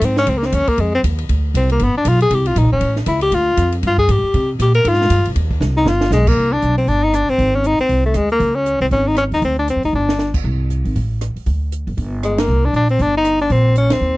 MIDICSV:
0, 0, Header, 1, 5, 480
1, 0, Start_track
1, 0, Key_signature, -3, "minor"
1, 0, Tempo, 254453
1, 517, Time_signature, 4, 2, 24, 8
1, 26734, End_track
2, 0, Start_track
2, 0, Title_t, "Tenor saxophone"
2, 0, Program_c, 0, 66
2, 91, Note_on_c, 0, 60, 77
2, 339, Note_off_c, 0, 60, 0
2, 350, Note_on_c, 0, 61, 102
2, 560, Note_on_c, 0, 60, 77
2, 588, Note_off_c, 0, 61, 0
2, 716, Note_on_c, 0, 58, 78
2, 744, Note_off_c, 0, 60, 0
2, 866, Note_on_c, 0, 60, 77
2, 895, Note_off_c, 0, 58, 0
2, 1032, Note_on_c, 0, 61, 100
2, 1061, Note_off_c, 0, 60, 0
2, 1300, Note_on_c, 0, 58, 88
2, 1329, Note_off_c, 0, 61, 0
2, 1517, Note_on_c, 0, 56, 77
2, 1545, Note_off_c, 0, 58, 0
2, 1777, Note_off_c, 0, 56, 0
2, 1789, Note_on_c, 0, 60, 92
2, 1898, Note_off_c, 0, 60, 0
2, 2956, Note_on_c, 0, 60, 85
2, 3203, Note_off_c, 0, 60, 0
2, 3238, Note_on_c, 0, 58, 81
2, 3461, Note_on_c, 0, 59, 82
2, 3489, Note_off_c, 0, 58, 0
2, 3714, Note_off_c, 0, 59, 0
2, 3726, Note_on_c, 0, 62, 91
2, 3936, Note_on_c, 0, 65, 94
2, 3964, Note_off_c, 0, 62, 0
2, 4182, Note_off_c, 0, 65, 0
2, 4193, Note_on_c, 0, 68, 110
2, 4423, Note_on_c, 0, 67, 90
2, 4452, Note_off_c, 0, 68, 0
2, 4653, Note_on_c, 0, 65, 86
2, 4681, Note_off_c, 0, 67, 0
2, 4876, Note_on_c, 0, 63, 82
2, 4904, Note_off_c, 0, 65, 0
2, 5126, Note_off_c, 0, 63, 0
2, 5137, Note_on_c, 0, 61, 87
2, 5575, Note_off_c, 0, 61, 0
2, 5815, Note_on_c, 0, 64, 83
2, 6070, Note_off_c, 0, 64, 0
2, 6078, Note_on_c, 0, 67, 106
2, 6302, Note_on_c, 0, 65, 93
2, 6330, Note_off_c, 0, 67, 0
2, 7052, Note_off_c, 0, 65, 0
2, 7297, Note_on_c, 0, 65, 82
2, 7506, Note_off_c, 0, 65, 0
2, 7517, Note_on_c, 0, 68, 103
2, 7747, Note_on_c, 0, 67, 87
2, 7775, Note_off_c, 0, 68, 0
2, 8492, Note_off_c, 0, 67, 0
2, 8710, Note_on_c, 0, 67, 83
2, 8947, Note_off_c, 0, 67, 0
2, 8958, Note_on_c, 0, 70, 105
2, 9210, Note_on_c, 0, 65, 97
2, 9238, Note_off_c, 0, 70, 0
2, 9942, Note_off_c, 0, 65, 0
2, 10884, Note_on_c, 0, 63, 100
2, 11104, Note_on_c, 0, 65, 89
2, 11132, Note_off_c, 0, 63, 0
2, 11552, Note_off_c, 0, 65, 0
2, 11563, Note_on_c, 0, 56, 99
2, 11847, Note_on_c, 0, 58, 104
2, 11875, Note_off_c, 0, 56, 0
2, 12312, Note_on_c, 0, 62, 91
2, 12340, Note_off_c, 0, 58, 0
2, 12774, Note_off_c, 0, 62, 0
2, 12785, Note_on_c, 0, 60, 87
2, 12989, Note_on_c, 0, 62, 95
2, 13017, Note_off_c, 0, 60, 0
2, 13270, Note_on_c, 0, 63, 97
2, 13298, Note_off_c, 0, 62, 0
2, 13483, Note_on_c, 0, 62, 95
2, 13512, Note_off_c, 0, 63, 0
2, 13764, Note_on_c, 0, 60, 99
2, 13792, Note_off_c, 0, 62, 0
2, 14247, Note_on_c, 0, 61, 87
2, 14275, Note_off_c, 0, 60, 0
2, 14461, Note_on_c, 0, 63, 97
2, 14489, Note_off_c, 0, 61, 0
2, 14712, Note_off_c, 0, 63, 0
2, 14723, Note_on_c, 0, 60, 93
2, 15161, Note_off_c, 0, 60, 0
2, 15201, Note_on_c, 0, 57, 80
2, 15403, Note_on_c, 0, 56, 88
2, 15431, Note_off_c, 0, 57, 0
2, 15677, Note_off_c, 0, 56, 0
2, 15692, Note_on_c, 0, 58, 94
2, 16141, Note_on_c, 0, 61, 92
2, 16169, Note_off_c, 0, 58, 0
2, 16615, Note_off_c, 0, 61, 0
2, 16627, Note_on_c, 0, 60, 83
2, 16714, Note_off_c, 0, 60, 0
2, 16833, Note_on_c, 0, 61, 92
2, 17119, Note_on_c, 0, 63, 87
2, 17147, Note_off_c, 0, 61, 0
2, 17303, Note_off_c, 0, 63, 0
2, 17315, Note_on_c, 0, 61, 87
2, 17440, Note_off_c, 0, 61, 0
2, 17611, Note_on_c, 0, 63, 89
2, 17781, Note_off_c, 0, 63, 0
2, 17817, Note_on_c, 0, 60, 89
2, 18067, Note_off_c, 0, 60, 0
2, 18088, Note_on_c, 0, 62, 88
2, 18260, Note_off_c, 0, 62, 0
2, 18298, Note_on_c, 0, 60, 79
2, 18547, Note_off_c, 0, 60, 0
2, 18581, Note_on_c, 0, 63, 82
2, 18747, Note_off_c, 0, 63, 0
2, 18774, Note_on_c, 0, 62, 85
2, 19473, Note_off_c, 0, 62, 0
2, 23096, Note_on_c, 0, 56, 79
2, 23381, Note_on_c, 0, 58, 88
2, 23410, Note_off_c, 0, 56, 0
2, 23867, Note_on_c, 0, 62, 91
2, 23895, Note_off_c, 0, 58, 0
2, 24048, Note_off_c, 0, 62, 0
2, 24070, Note_on_c, 0, 62, 96
2, 24319, Note_off_c, 0, 62, 0
2, 24344, Note_on_c, 0, 60, 88
2, 24557, Note_on_c, 0, 62, 96
2, 24585, Note_off_c, 0, 60, 0
2, 24821, Note_off_c, 0, 62, 0
2, 24847, Note_on_c, 0, 63, 101
2, 25273, Note_off_c, 0, 63, 0
2, 25303, Note_on_c, 0, 62, 91
2, 25501, Note_on_c, 0, 60, 97
2, 25529, Note_off_c, 0, 62, 0
2, 25970, Note_off_c, 0, 60, 0
2, 25983, Note_on_c, 0, 61, 90
2, 26277, Note_on_c, 0, 60, 83
2, 26305, Note_off_c, 0, 61, 0
2, 26734, Note_off_c, 0, 60, 0
2, 26734, End_track
3, 0, Start_track
3, 0, Title_t, "Upright bass"
3, 0, Program_c, 1, 32
3, 25, Note_on_c, 1, 44, 90
3, 497, Note_off_c, 1, 44, 0
3, 506, Note_on_c, 1, 37, 86
3, 978, Note_off_c, 1, 37, 0
3, 992, Note_on_c, 1, 39, 95
3, 1260, Note_off_c, 1, 39, 0
3, 1467, Note_on_c, 1, 41, 81
3, 1938, Note_off_c, 1, 41, 0
3, 1953, Note_on_c, 1, 39, 92
3, 2421, Note_off_c, 1, 39, 0
3, 2436, Note_on_c, 1, 38, 93
3, 2902, Note_off_c, 1, 38, 0
3, 2910, Note_on_c, 1, 36, 92
3, 3379, Note_off_c, 1, 36, 0
3, 3389, Note_on_c, 1, 31, 85
3, 3658, Note_off_c, 1, 31, 0
3, 3866, Note_on_c, 1, 35, 91
3, 4336, Note_off_c, 1, 35, 0
3, 4347, Note_on_c, 1, 36, 90
3, 4811, Note_off_c, 1, 36, 0
3, 4823, Note_on_c, 1, 34, 96
3, 4983, Note_on_c, 1, 31, 59
3, 5012, Note_off_c, 1, 34, 0
3, 5133, Note_off_c, 1, 31, 0
3, 5144, Note_on_c, 1, 27, 68
3, 5282, Note_off_c, 1, 27, 0
3, 5293, Note_on_c, 1, 33, 89
3, 5769, Note_off_c, 1, 33, 0
3, 5780, Note_on_c, 1, 37, 94
3, 6237, Note_off_c, 1, 37, 0
3, 6249, Note_on_c, 1, 38, 90
3, 6726, Note_off_c, 1, 38, 0
3, 6738, Note_on_c, 1, 41, 97
3, 7205, Note_off_c, 1, 41, 0
3, 7216, Note_on_c, 1, 43, 86
3, 7688, Note_off_c, 1, 43, 0
3, 7701, Note_on_c, 1, 44, 97
3, 7970, Note_off_c, 1, 44, 0
3, 8186, Note_on_c, 1, 48, 93
3, 8648, Note_off_c, 1, 48, 0
3, 8660, Note_on_c, 1, 46, 97
3, 9128, Note_off_c, 1, 46, 0
3, 9140, Note_on_c, 1, 44, 94
3, 9608, Note_off_c, 1, 44, 0
3, 9621, Note_on_c, 1, 43, 95
3, 9780, Note_on_c, 1, 39, 60
3, 9809, Note_off_c, 1, 43, 0
3, 9936, Note_off_c, 1, 39, 0
3, 9947, Note_on_c, 1, 36, 69
3, 10090, Note_off_c, 1, 36, 0
3, 10101, Note_on_c, 1, 39, 95
3, 10561, Note_off_c, 1, 39, 0
3, 10572, Note_on_c, 1, 36, 101
3, 11035, Note_off_c, 1, 36, 0
3, 11047, Note_on_c, 1, 31, 95
3, 11507, Note_off_c, 1, 31, 0
3, 11518, Note_on_c, 1, 35, 91
3, 11994, Note_off_c, 1, 35, 0
3, 12013, Note_on_c, 1, 36, 79
3, 12462, Note_off_c, 1, 36, 0
3, 12498, Note_on_c, 1, 35, 76
3, 12945, Note_off_c, 1, 35, 0
3, 12970, Note_on_c, 1, 31, 77
3, 13686, Note_off_c, 1, 31, 0
3, 13927, Note_on_c, 1, 32, 80
3, 14645, Note_off_c, 1, 32, 0
3, 14882, Note_on_c, 1, 36, 78
3, 15337, Note_off_c, 1, 36, 0
3, 15374, Note_on_c, 1, 38, 72
3, 15823, Note_off_c, 1, 38, 0
3, 15839, Note_on_c, 1, 37, 89
3, 16561, Note_off_c, 1, 37, 0
3, 16609, Note_on_c, 1, 36, 71
3, 16791, Note_off_c, 1, 36, 0
3, 16802, Note_on_c, 1, 32, 79
3, 17523, Note_off_c, 1, 32, 0
3, 17568, Note_on_c, 1, 39, 64
3, 17754, Note_off_c, 1, 39, 0
3, 17765, Note_on_c, 1, 38, 90
3, 18369, Note_off_c, 1, 38, 0
3, 18409, Note_on_c, 1, 41, 58
3, 18558, Note_off_c, 1, 41, 0
3, 18569, Note_on_c, 1, 38, 64
3, 18719, Note_off_c, 1, 38, 0
3, 18730, Note_on_c, 1, 31, 80
3, 19650, Note_off_c, 1, 31, 0
3, 19696, Note_on_c, 1, 36, 83
3, 20413, Note_off_c, 1, 36, 0
3, 20467, Note_on_c, 1, 32, 71
3, 20651, Note_off_c, 1, 32, 0
3, 20663, Note_on_c, 1, 33, 77
3, 21378, Note_off_c, 1, 33, 0
3, 21624, Note_on_c, 1, 38, 88
3, 22339, Note_off_c, 1, 38, 0
3, 22391, Note_on_c, 1, 30, 72
3, 22574, Note_off_c, 1, 30, 0
3, 22586, Note_on_c, 1, 31, 79
3, 23502, Note_off_c, 1, 31, 0
3, 23542, Note_on_c, 1, 36, 87
3, 23994, Note_off_c, 1, 36, 0
3, 24016, Note_on_c, 1, 34, 74
3, 24472, Note_off_c, 1, 34, 0
3, 24507, Note_on_c, 1, 31, 82
3, 25425, Note_off_c, 1, 31, 0
3, 25465, Note_on_c, 1, 34, 87
3, 26184, Note_off_c, 1, 34, 0
3, 26234, Note_on_c, 1, 38, 66
3, 26414, Note_off_c, 1, 38, 0
3, 26425, Note_on_c, 1, 39, 78
3, 26734, Note_off_c, 1, 39, 0
3, 26734, End_track
4, 0, Start_track
4, 0, Title_t, "Muted upright bass strokes"
4, 1273, Note_on_c, 9, 29, 43
4, 1461, Note_off_c, 9, 29, 0
4, 3669, Note_on_c, 9, 29, 40
4, 3857, Note_off_c, 9, 29, 0
4, 7979, Note_on_c, 9, 29, 42
4, 8168, Note_off_c, 9, 29, 0
4, 13750, Note_on_c, 9, 29, 37
4, 13939, Note_off_c, 9, 29, 0
4, 14698, Note_on_c, 9, 29, 39
4, 14886, Note_off_c, 9, 29, 0
4, 21425, Note_on_c, 9, 29, 36
4, 21613, Note_off_c, 9, 29, 0
4, 26734, End_track
5, 0, Start_track
5, 0, Title_t, "Drums"
5, 26, Note_on_c, 9, 44, 73
5, 26, Note_on_c, 9, 51, 83
5, 32, Note_on_c, 9, 36, 24
5, 215, Note_off_c, 9, 44, 0
5, 215, Note_off_c, 9, 51, 0
5, 220, Note_off_c, 9, 36, 0
5, 316, Note_on_c, 9, 38, 56
5, 503, Note_on_c, 9, 51, 69
5, 505, Note_off_c, 9, 38, 0
5, 514, Note_on_c, 9, 36, 20
5, 691, Note_off_c, 9, 51, 0
5, 702, Note_off_c, 9, 36, 0
5, 803, Note_on_c, 9, 38, 42
5, 989, Note_on_c, 9, 44, 52
5, 989, Note_on_c, 9, 51, 74
5, 992, Note_off_c, 9, 38, 0
5, 994, Note_on_c, 9, 36, 25
5, 1178, Note_off_c, 9, 44, 0
5, 1178, Note_off_c, 9, 51, 0
5, 1183, Note_off_c, 9, 36, 0
5, 1272, Note_on_c, 9, 51, 48
5, 1279, Note_on_c, 9, 36, 53
5, 1461, Note_off_c, 9, 51, 0
5, 1468, Note_off_c, 9, 36, 0
5, 1468, Note_on_c, 9, 51, 65
5, 1476, Note_on_c, 9, 36, 19
5, 1657, Note_off_c, 9, 51, 0
5, 1665, Note_off_c, 9, 36, 0
5, 1959, Note_on_c, 9, 36, 23
5, 1961, Note_on_c, 9, 44, 56
5, 1961, Note_on_c, 9, 51, 76
5, 2148, Note_off_c, 9, 36, 0
5, 2150, Note_off_c, 9, 44, 0
5, 2150, Note_off_c, 9, 51, 0
5, 2235, Note_on_c, 9, 51, 53
5, 2424, Note_off_c, 9, 51, 0
5, 2436, Note_on_c, 9, 51, 70
5, 2439, Note_on_c, 9, 36, 21
5, 2625, Note_off_c, 9, 51, 0
5, 2628, Note_off_c, 9, 36, 0
5, 2920, Note_on_c, 9, 36, 20
5, 2921, Note_on_c, 9, 44, 59
5, 2921, Note_on_c, 9, 51, 79
5, 3109, Note_off_c, 9, 36, 0
5, 3110, Note_off_c, 9, 44, 0
5, 3110, Note_off_c, 9, 51, 0
5, 3197, Note_on_c, 9, 51, 53
5, 3386, Note_off_c, 9, 51, 0
5, 3386, Note_on_c, 9, 51, 69
5, 3395, Note_on_c, 9, 36, 23
5, 3575, Note_off_c, 9, 51, 0
5, 3584, Note_off_c, 9, 36, 0
5, 3865, Note_on_c, 9, 44, 65
5, 3865, Note_on_c, 9, 51, 84
5, 3871, Note_on_c, 9, 36, 25
5, 4054, Note_off_c, 9, 44, 0
5, 4054, Note_off_c, 9, 51, 0
5, 4060, Note_off_c, 9, 36, 0
5, 4159, Note_on_c, 9, 51, 53
5, 4348, Note_off_c, 9, 51, 0
5, 4350, Note_on_c, 9, 36, 22
5, 4350, Note_on_c, 9, 51, 69
5, 4538, Note_off_c, 9, 51, 0
5, 4539, Note_off_c, 9, 36, 0
5, 4633, Note_on_c, 9, 51, 52
5, 4822, Note_off_c, 9, 51, 0
5, 4827, Note_on_c, 9, 36, 21
5, 4829, Note_on_c, 9, 44, 67
5, 4829, Note_on_c, 9, 51, 73
5, 5016, Note_off_c, 9, 36, 0
5, 5017, Note_off_c, 9, 44, 0
5, 5017, Note_off_c, 9, 51, 0
5, 5295, Note_on_c, 9, 51, 68
5, 5302, Note_on_c, 9, 36, 28
5, 5483, Note_off_c, 9, 51, 0
5, 5490, Note_off_c, 9, 36, 0
5, 5588, Note_on_c, 9, 38, 44
5, 5774, Note_on_c, 9, 44, 55
5, 5774, Note_on_c, 9, 51, 81
5, 5777, Note_off_c, 9, 38, 0
5, 5781, Note_on_c, 9, 36, 25
5, 5963, Note_off_c, 9, 44, 0
5, 5963, Note_off_c, 9, 51, 0
5, 5970, Note_off_c, 9, 36, 0
5, 6058, Note_on_c, 9, 51, 53
5, 6246, Note_off_c, 9, 51, 0
5, 6259, Note_on_c, 9, 36, 26
5, 6260, Note_on_c, 9, 51, 66
5, 6448, Note_off_c, 9, 36, 0
5, 6448, Note_off_c, 9, 51, 0
5, 6740, Note_on_c, 9, 44, 59
5, 6740, Note_on_c, 9, 51, 73
5, 6741, Note_on_c, 9, 36, 27
5, 6928, Note_off_c, 9, 44, 0
5, 6928, Note_off_c, 9, 51, 0
5, 6929, Note_off_c, 9, 36, 0
5, 7024, Note_on_c, 9, 51, 50
5, 7213, Note_off_c, 9, 51, 0
5, 7221, Note_on_c, 9, 36, 22
5, 7221, Note_on_c, 9, 51, 70
5, 7410, Note_off_c, 9, 36, 0
5, 7410, Note_off_c, 9, 51, 0
5, 7510, Note_on_c, 9, 36, 58
5, 7698, Note_off_c, 9, 36, 0
5, 7705, Note_on_c, 9, 36, 28
5, 7708, Note_on_c, 9, 44, 61
5, 7708, Note_on_c, 9, 51, 80
5, 7894, Note_off_c, 9, 36, 0
5, 7897, Note_off_c, 9, 44, 0
5, 7897, Note_off_c, 9, 51, 0
5, 8185, Note_on_c, 9, 51, 66
5, 8188, Note_on_c, 9, 36, 27
5, 8374, Note_off_c, 9, 51, 0
5, 8377, Note_off_c, 9, 36, 0
5, 8669, Note_on_c, 9, 36, 22
5, 8669, Note_on_c, 9, 44, 69
5, 8669, Note_on_c, 9, 51, 73
5, 8858, Note_off_c, 9, 36, 0
5, 8858, Note_off_c, 9, 44, 0
5, 8858, Note_off_c, 9, 51, 0
5, 8949, Note_on_c, 9, 51, 53
5, 9138, Note_off_c, 9, 51, 0
5, 9146, Note_on_c, 9, 51, 74
5, 9147, Note_on_c, 9, 36, 25
5, 9312, Note_on_c, 9, 38, 29
5, 9335, Note_off_c, 9, 51, 0
5, 9336, Note_off_c, 9, 36, 0
5, 9467, Note_off_c, 9, 38, 0
5, 9467, Note_on_c, 9, 38, 48
5, 9621, Note_on_c, 9, 44, 57
5, 9621, Note_on_c, 9, 51, 87
5, 9627, Note_on_c, 9, 36, 31
5, 9656, Note_off_c, 9, 38, 0
5, 9810, Note_off_c, 9, 44, 0
5, 9810, Note_off_c, 9, 51, 0
5, 9816, Note_off_c, 9, 36, 0
5, 9912, Note_on_c, 9, 51, 57
5, 10100, Note_off_c, 9, 51, 0
5, 10105, Note_on_c, 9, 51, 68
5, 10106, Note_on_c, 9, 36, 27
5, 10294, Note_off_c, 9, 36, 0
5, 10294, Note_off_c, 9, 51, 0
5, 10387, Note_on_c, 9, 36, 61
5, 10576, Note_off_c, 9, 36, 0
5, 10580, Note_on_c, 9, 44, 56
5, 10582, Note_on_c, 9, 38, 54
5, 10768, Note_off_c, 9, 44, 0
5, 10770, Note_off_c, 9, 38, 0
5, 11062, Note_on_c, 9, 38, 89
5, 11250, Note_off_c, 9, 38, 0
5, 11335, Note_on_c, 9, 38, 79
5, 11524, Note_off_c, 9, 38, 0
5, 11533, Note_on_c, 9, 44, 71
5, 11535, Note_on_c, 9, 38, 65
5, 11722, Note_off_c, 9, 44, 0
5, 11724, Note_off_c, 9, 38, 0
5, 11828, Note_on_c, 9, 36, 85
5, 11829, Note_on_c, 9, 49, 88
5, 12016, Note_off_c, 9, 36, 0
5, 12018, Note_off_c, 9, 49, 0
5, 12023, Note_on_c, 9, 36, 36
5, 12212, Note_off_c, 9, 36, 0
5, 12493, Note_on_c, 9, 42, 50
5, 12682, Note_off_c, 9, 42, 0
5, 12788, Note_on_c, 9, 46, 39
5, 12975, Note_off_c, 9, 46, 0
5, 12975, Note_on_c, 9, 46, 42
5, 12977, Note_on_c, 9, 36, 34
5, 13164, Note_off_c, 9, 46, 0
5, 13166, Note_off_c, 9, 36, 0
5, 13460, Note_on_c, 9, 42, 54
5, 13462, Note_on_c, 9, 37, 62
5, 13648, Note_off_c, 9, 42, 0
5, 13650, Note_off_c, 9, 37, 0
5, 13743, Note_on_c, 9, 46, 38
5, 13932, Note_off_c, 9, 46, 0
5, 13934, Note_on_c, 9, 36, 35
5, 13937, Note_on_c, 9, 46, 43
5, 14123, Note_off_c, 9, 36, 0
5, 14125, Note_off_c, 9, 46, 0
5, 14410, Note_on_c, 9, 42, 48
5, 14599, Note_off_c, 9, 42, 0
5, 14696, Note_on_c, 9, 46, 40
5, 14885, Note_off_c, 9, 46, 0
5, 14887, Note_on_c, 9, 46, 43
5, 14890, Note_on_c, 9, 36, 32
5, 15075, Note_off_c, 9, 46, 0
5, 15079, Note_off_c, 9, 36, 0
5, 15355, Note_on_c, 9, 42, 54
5, 15357, Note_on_c, 9, 37, 62
5, 15544, Note_off_c, 9, 42, 0
5, 15546, Note_off_c, 9, 37, 0
5, 15648, Note_on_c, 9, 46, 39
5, 15837, Note_off_c, 9, 46, 0
5, 15849, Note_on_c, 9, 36, 33
5, 15850, Note_on_c, 9, 46, 46
5, 16037, Note_off_c, 9, 36, 0
5, 16039, Note_off_c, 9, 46, 0
5, 16335, Note_on_c, 9, 42, 50
5, 16523, Note_off_c, 9, 42, 0
5, 16619, Note_on_c, 9, 46, 38
5, 16807, Note_off_c, 9, 46, 0
5, 16809, Note_on_c, 9, 36, 34
5, 16810, Note_on_c, 9, 46, 41
5, 16998, Note_off_c, 9, 36, 0
5, 16998, Note_off_c, 9, 46, 0
5, 17288, Note_on_c, 9, 42, 54
5, 17290, Note_on_c, 9, 37, 66
5, 17477, Note_off_c, 9, 42, 0
5, 17478, Note_off_c, 9, 37, 0
5, 17578, Note_on_c, 9, 46, 38
5, 17767, Note_off_c, 9, 46, 0
5, 17770, Note_on_c, 9, 46, 45
5, 17773, Note_on_c, 9, 36, 35
5, 17959, Note_off_c, 9, 46, 0
5, 17962, Note_off_c, 9, 36, 0
5, 18255, Note_on_c, 9, 42, 52
5, 18444, Note_off_c, 9, 42, 0
5, 18545, Note_on_c, 9, 46, 37
5, 18734, Note_off_c, 9, 46, 0
5, 19030, Note_on_c, 9, 38, 60
5, 19219, Note_off_c, 9, 38, 0
5, 19219, Note_on_c, 9, 38, 60
5, 19408, Note_off_c, 9, 38, 0
5, 19508, Note_on_c, 9, 36, 72
5, 19511, Note_on_c, 9, 49, 72
5, 19696, Note_off_c, 9, 36, 0
5, 19699, Note_off_c, 9, 49, 0
5, 19702, Note_on_c, 9, 36, 33
5, 19891, Note_off_c, 9, 36, 0
5, 20188, Note_on_c, 9, 42, 50
5, 20377, Note_off_c, 9, 42, 0
5, 20474, Note_on_c, 9, 46, 37
5, 20663, Note_off_c, 9, 46, 0
5, 20668, Note_on_c, 9, 36, 33
5, 20671, Note_on_c, 9, 46, 45
5, 20856, Note_off_c, 9, 36, 0
5, 20860, Note_off_c, 9, 46, 0
5, 21149, Note_on_c, 9, 42, 58
5, 21151, Note_on_c, 9, 37, 63
5, 21338, Note_off_c, 9, 42, 0
5, 21340, Note_off_c, 9, 37, 0
5, 21438, Note_on_c, 9, 46, 39
5, 21621, Note_off_c, 9, 46, 0
5, 21621, Note_on_c, 9, 46, 48
5, 21627, Note_on_c, 9, 36, 34
5, 21810, Note_off_c, 9, 46, 0
5, 21815, Note_off_c, 9, 36, 0
5, 22111, Note_on_c, 9, 42, 56
5, 22299, Note_off_c, 9, 42, 0
5, 22400, Note_on_c, 9, 46, 38
5, 22589, Note_off_c, 9, 46, 0
5, 22590, Note_on_c, 9, 36, 33
5, 22591, Note_on_c, 9, 46, 43
5, 22779, Note_off_c, 9, 36, 0
5, 22780, Note_off_c, 9, 46, 0
5, 23075, Note_on_c, 9, 42, 55
5, 23077, Note_on_c, 9, 37, 68
5, 23263, Note_off_c, 9, 42, 0
5, 23265, Note_off_c, 9, 37, 0
5, 23359, Note_on_c, 9, 51, 67
5, 23361, Note_on_c, 9, 38, 83
5, 23547, Note_off_c, 9, 51, 0
5, 23549, Note_off_c, 9, 38, 0
5, 24037, Note_on_c, 9, 42, 49
5, 24225, Note_off_c, 9, 42, 0
5, 24319, Note_on_c, 9, 46, 38
5, 24507, Note_off_c, 9, 46, 0
5, 24509, Note_on_c, 9, 46, 46
5, 24514, Note_on_c, 9, 36, 33
5, 24698, Note_off_c, 9, 46, 0
5, 24703, Note_off_c, 9, 36, 0
5, 24988, Note_on_c, 9, 42, 54
5, 24990, Note_on_c, 9, 37, 64
5, 25177, Note_off_c, 9, 42, 0
5, 25179, Note_off_c, 9, 37, 0
5, 25272, Note_on_c, 9, 46, 40
5, 25460, Note_off_c, 9, 46, 0
5, 25466, Note_on_c, 9, 46, 46
5, 25472, Note_on_c, 9, 36, 33
5, 25655, Note_off_c, 9, 46, 0
5, 25661, Note_off_c, 9, 36, 0
5, 25947, Note_on_c, 9, 42, 53
5, 26135, Note_off_c, 9, 42, 0
5, 26225, Note_on_c, 9, 51, 66
5, 26227, Note_on_c, 9, 38, 75
5, 26413, Note_off_c, 9, 51, 0
5, 26415, Note_off_c, 9, 38, 0
5, 26734, End_track
0, 0, End_of_file